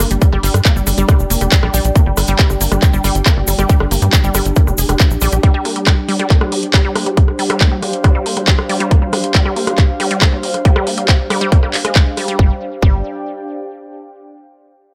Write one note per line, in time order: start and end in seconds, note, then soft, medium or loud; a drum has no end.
0.00 12.38 D4 medium
0.00 12.39 G4 medium
0.00 5.40 D5 medium
0.00 6.65 G5 medium
0.11 0.18 G1 medium
0.11 0.17 G3 medium
0.11 closed hi-hat medium
0.11 shaker soft
0.22 0.24 G3 medium
0.22 kick loud
0.22 closed hi-hat medium
0.22 shaker medium
0.32 0.39 G1 medium
0.32 0.35 G3 loud
0.32 cross-stick soft
0.43 0.50 G1 loud
0.43 0.46 G3 medium
0.43 open hi-hat loud
0.43 shaker loud
0.54 0.61 G2 loud
0.54 cross-stick medium
0.54 closed hi-hat medium
0.54 shaker soft
0.65 0.69 A#3 medium
0.65 kick loud
0.65 clap loud
0.65 closed hi-hat medium
0.65 shaker medium
0.76 0.83 G1 medium
0.76 0.82 G3 medium
0.76 shaker soft
0.87 0.94 G1 loud
0.87 0.89 G3 medium
0.87 cross-stick soft
0.87 open hi-hat loud
0.87 shaker medium
0.98 1.05 G1 medium
0.98 1.00 G3 loud
0.98 closed hi-hat medium
0.98 shaker soft
1.09 1.11 G3 loud
1.09 kick loud
1.09 cross-stick medium
1.09 closed hi-hat medium
1.09 shaker medium
1.19 1.26 F1 medium
1.19 shaker soft
1.30 1.37 F1 loud
1.30 1.34 A#3 medium
1.30 open hi-hat loud
1.30 shaker loud
1.41 1.48 F1 medium
1.41 1.47 G3 medium
1.41 cross-stick soft
1.41 closed hi-hat medium
1.41 shaker soft
1.52 1.55 G3 medium
1.52 kick loud
1.52 clap loud
1.52 closed hi-hat medium
1.52 shaker medium
1.63 1.70 A#1 medium
1.63 1.65 G3 loud
1.63 cross-stick medium
1.74 1.81 A#1 loud
1.74 1.76 G3 loud
1.74 open hi-hat loud
1.74 shaker loud
1.84 1.92 A#1 medium
1.84 closed hi-hat medium
1.84 shaker soft
1.96 2.00 A#3 medium
1.96 kick loud
1.96 cross-stick soft
1.96 closed hi-hat medium
1.96 shaker medium
2.06 2.13 G1 medium
2.06 2.13 G3 medium
2.17 2.24 G1 loud
2.17 2.20 G3 medium
2.17 cross-stick medium
2.17 open hi-hat loud
2.17 shaker loud
2.27 2.35 G1 loud
2.27 2.31 G3 loud
2.27 closed hi-hat medium
2.27 shaker soft
2.39 2.42 G3 loud
2.39 kick loud
2.39 clap loud
2.39 closed hi-hat medium
2.39 shaker medium
2.50 2.57 G1 medium
2.50 cross-stick soft
2.50 shaker soft
2.61 2.68 G1 loud
2.61 2.65 A#3 medium
2.61 open hi-hat loud
2.61 shaker loud
2.72 2.79 G1 medium
2.72 2.78 G3 medium
2.72 cross-stick medium
2.72 closed hi-hat medium
2.72 shaker soft
2.82 2.85 G3 medium
2.82 kick loud
2.82 clap medium
2.82 closed hi-hat medium
2.82 shaker medium
2.93 3.00 G1 medium
2.93 2.96 G3 loud
2.93 shaker soft
3.04 3.11 G1 loud
3.04 3.07 G3 loud
3.04 cross-stick soft
3.04 open hi-hat loud
3.04 shaker loud
3.15 3.22 G1 medium
3.15 closed hi-hat medium
3.15 shaker soft
3.26 3.30 A#3 medium
3.26 kick loud
3.26 cross-stick medium
3.26 clap loud
3.26 closed hi-hat medium
3.26 shaker medium
3.37 3.44 G1 medium
3.37 3.43 G3 medium
3.47 3.55 G1 loud
3.47 3.50 G3 medium
3.47 open hi-hat loud
3.47 shaker loud
3.59 3.65 G1 medium
3.59 3.61 G3 loud
3.59 cross-stick soft
3.59 closed hi-hat medium
3.59 shaker soft
3.69 3.72 G3 loud
3.69 kick loud
3.69 closed hi-hat medium
3.69 shaker medium
3.80 3.87 G1 medium
3.80 cross-stick medium
3.91 3.98 G1 loud
3.91 3.95 A#3 medium
3.91 open hi-hat loud
3.91 shaker loud
4.02 4.09 G2 loud
4.02 4.08 G3 medium
4.02 closed hi-hat medium
4.02 shaker soft
4.13 4.15 G3 medium
4.13 kick loud
4.13 cross-stick soft
4.13 clap loud
4.13 closed hi-hat medium
4.13 shaker medium
4.24 4.31 G1 medium
4.24 4.26 G3 loud
4.24 shaker soft
4.34 4.42 G1 loud
4.34 4.37 G3 loud
4.34 cross-stick medium
4.34 open hi-hat loud
4.34 shaker loud
4.46 4.52 G1 medium
4.46 closed hi-hat medium
4.46 shaker soft
4.56 4.61 A#3 medium
4.56 kick loud
4.56 closed hi-hat medium
4.56 shaker medium
4.67 4.74 F1 medium
4.67 4.74 G3 medium
4.67 cross-stick soft
4.67 shaker soft
4.78 4.85 F1 medium
4.78 4.84 G#4 medium
4.78 open hi-hat loud
4.78 shaker loud
4.89 4.96 F1 medium
4.89 4.93 G3 medium
4.89 cross-stick medium
4.89 closed hi-hat medium
4.89 shaker soft
5.00 5.04 G3 medium
5.00 kick loud
5.00 clap loud
5.00 closed hi-hat medium
5.00 shaker medium
5.11 5.18 A#1 medium
5.11 shaker soft
5.21 5.29 A#1 loud
5.21 5.26 G3 loud
5.21 cross-stick soft
5.21 open hi-hat loud
5.21 shaker medium
5.27 12.39 C5 medium
5.32 5.39 A#1 medium
5.32 5.37 G4 medium
5.32 closed hi-hat medium
5.32 shaker soft
5.43 5.46 G3 loud
5.43 kick loud
5.43 closed hi-hat medium
5.54 5.57 G3 loud
5.65 5.69 A#3 medium
5.65 cross-stick soft
5.65 open hi-hat loud
5.76 5.82 G3 medium
5.76 closed hi-hat medium
5.87 5.89 G3 medium
5.87 kick loud
5.87 cross-stick medium
5.87 clap loud
5.87 closed hi-hat medium
6.09 6.11 G3 loud
6.09 open hi-hat medium
6.19 6.22 G3 loud
6.19 cross-stick soft
6.19 closed hi-hat medium
6.30 6.34 A#3 medium
6.30 kick loud
6.30 clap medium
6.30 closed hi-hat medium
6.41 6.47 G3 medium
6.41 cross-stick medium
6.52 6.55 G3 medium
6.52 12.39 F5 medium
6.52 open hi-hat loud
6.63 closed hi-hat medium
6.74 6.76 G3 loud
6.74 kick loud
6.74 cross-stick soft
6.74 clap loud
6.74 closed hi-hat medium
6.85 6.87 G3 loud
6.96 7.00 A#3 medium
6.96 cross-stick medium
6.96 open hi-hat loud
7.06 7.13 G3 medium
7.06 closed hi-hat medium
7.17 7.20 G3 medium
7.17 kick loud
7.17 closed hi-hat medium
7.28 cross-stick soft
7.39 7.42 G3 medium
7.39 open hi-hat loud
7.50 7.52 G3 loud
7.50 cross-stick medium
7.50 closed hi-hat medium
7.61 7.65 A#3 medium
7.61 kick loud
7.61 clap loud
7.61 closed hi-hat medium
7.72 7.78 G3 medium
7.82 7.85 G3 medium
7.82 cross-stick soft
7.82 open hi-hat medium
7.93 closed hi-hat medium
8.04 8.07 G3 loud
8.04 kick loud
8.04 cross-stick medium
8.04 closed hi-hat medium
8.15 8.18 G3 loud
8.26 8.30 A#3 medium
8.26 open hi-hat loud
8.37 8.43 G3 medium
8.37 cross-stick soft
8.37 closed hi-hat medium
8.48 8.50 G3 medium
8.48 kick loud
8.48 clap loud
8.48 closed hi-hat medium
8.59 cross-stick medium
8.69 8.72 G3 loud
8.69 open hi-hat medium
8.80 8.83 G3 loud
8.80 closed hi-hat medium
8.91 8.95 A#3 medium
8.91 kick loud
8.91 cross-stick soft
8.91 closed hi-hat medium
9.02 9.08 G3 medium
9.13 9.15 G3 medium
9.13 cross-stick medium
9.13 open hi-hat loud
9.24 closed hi-hat medium
9.35 9.37 G3 loud
9.35 kick loud
9.35 clap loud
9.35 closed hi-hat medium
9.46 9.48 G3 loud
9.46 cross-stick soft
9.56 9.61 A#3 medium
9.56 open hi-hat medium
9.67 9.74 G3 medium
9.67 cross-stick medium
9.67 closed hi-hat medium
9.78 9.81 G3 medium
9.78 kick loud
9.78 clap medium
9.78 closed hi-hat medium
10.00 10.02 G3 loud
10.00 cross-stick soft
10.00 open hi-hat loud
10.11 10.13 G3 loud
10.11 closed hi-hat medium
10.22 10.26 A#3 medium
10.22 kick loud
10.22 cross-stick medium
10.22 clap loud
10.22 closed hi-hat medium
10.33 10.39 G3 medium
10.43 10.46 G3 medium
10.43 open hi-hat medium
10.54 cross-stick soft
10.54 closed hi-hat medium
10.65 10.68 G3 loud
10.65 kick loud
10.65 closed hi-hat medium
10.76 10.78 G3 loud
10.76 cross-stick medium
10.87 10.91 A#3 medium
10.87 open hi-hat loud
10.98 11.04 G3 medium
10.98 closed hi-hat medium
11.09 11.11 G3 medium
11.09 kick loud
11.09 cross-stick soft
11.09 clap loud
11.09 closed hi-hat medium
11.30 11.33 G3 loud
11.30 cross-stick medium
11.30 open hi-hat medium
11.41 11.44 G3 loud
11.41 closed hi-hat medium
11.52 11.56 A#3 medium
11.52 kick loud
11.52 closed hi-hat medium
11.63 11.69 G3 medium
11.63 cross-stick soft
11.74 clap medium
11.74 open hi-hat loud
11.85 11.89 G#3 medium
11.85 cross-stick medium
11.85 closed hi-hat medium
11.96 12.00 G#3 medium
11.96 kick loud
11.96 clap loud
11.96 closed hi-hat medium
12.17 12.21 G3 medium
12.17 cross-stick soft
12.17 open hi-hat medium
12.28 12.31 G3 medium
12.28 closed hi-hat medium
12.39 12.51 G1 loud
12.39 12.51 G3 medium
12.39 14.09 D4 medium
12.39 kick loud
12.46 14.09 G4 medium
12.52 14.09 D5 medium
12.59 14.09 G5 medium
12.82 13.03 G1 medium
12.82 13.03 G3 medium
12.82 kick loud